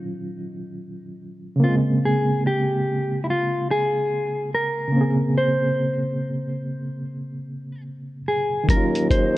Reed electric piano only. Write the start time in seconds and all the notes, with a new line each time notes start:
Already playing: D#3 F#3 C#4 F4
1.56 C#3
1.60 A#3
1.64 C4
1.69 G#3
4.88 C#3
4.92 A#3
4.96 C4
5.01 G#4
8.64 D#3
8.68 F#3
8.72 C#4
8.77 F4